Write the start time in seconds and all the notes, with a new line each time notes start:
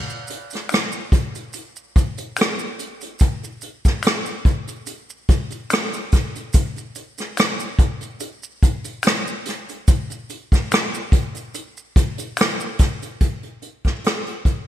0.10 maracas
0.27 closed hi-hat, maracas
0.50 closed hi-hat, maracas
0.55 cross-stick
0.69 finger snap, closed hi-hat, maracas
0.74 cross-stick
0.92 maracas
1.12 kick, closed hi-hat
1.35 closed hi-hat, maracas
1.53 closed hi-hat, maracas
1.76 maracas
1.96 kick, closed hi-hat, maracas
2.18 closed hi-hat, maracas
2.37 finger snap, closed hi-hat, maracas
2.41 cross-stick
2.59 maracas
2.79 closed hi-hat, maracas
3.01 closed hi-hat, maracas
3.19 kick, closed hi-hat, maracas
3.43 closed hi-hat, maracas
3.61 closed hi-hat, maracas
3.85 kick, cross-stick, closed hi-hat, maracas
4.03 finger snap, closed hi-hat, maracas
4.07 cross-stick
4.26 closed hi-hat, maracas
4.45 kick, closed hi-hat
4.67 closed hi-hat, maracas
4.86 closed hi-hat, maracas
5.10 maracas
5.29 kick, closed hi-hat, maracas
5.50 closed hi-hat, maracas
5.70 finger snap, cross-stick, closed hi-hat, maracas
5.93 closed hi-hat, maracas
6.12 kick, cross-stick, closed hi-hat, maracas
6.35 closed hi-hat, maracas
6.53 kick, closed hi-hat, maracas
6.76 closed hi-hat, maracas
6.95 closed hi-hat, maracas
7.18 cross-stick, closed hi-hat, maracas
7.37 finger snap, cross-stick, closed hi-hat, maracas
7.60 closed hi-hat, maracas
7.79 kick, closed hi-hat
8.01 closed hi-hat, maracas
8.20 closed hi-hat, maracas
8.43 maracas
8.63 kick, closed hi-hat, maracas
8.84 closed hi-hat, maracas
9.03 finger snap, cross-stick, closed hi-hat, maracas
9.27 maracas
9.45 cross-stick, closed hi-hat, maracas
9.69 closed hi-hat, maracas
9.87 kick, closed hi-hat, maracas
10.10 closed hi-hat, maracas
10.29 closed hi-hat, maracas
10.52 kick, cross-stick, closed hi-hat, maracas
10.71 finger snap, cross-stick, closed hi-hat, maracas
10.94 closed hi-hat, maracas
11.12 kick, closed hi-hat
11.34 closed hi-hat, maracas
11.54 closed hi-hat, maracas
11.77 maracas
11.96 kick, closed hi-hat, maracas
12.18 closed hi-hat, maracas
12.37 finger snap, cross-stick, closed hi-hat, maracas
12.60 maracas
12.79 kick, cross-stick, closed hi-hat, maracas
13.02 closed hi-hat, maracas
13.21 kick, closed hi-hat
13.43 closed hi-hat
13.62 closed hi-hat
13.84 kick, cross-stick, closed hi-hat
14.04 cross-stick, closed hi-hat
14.26 closed hi-hat
14.45 kick, closed hi-hat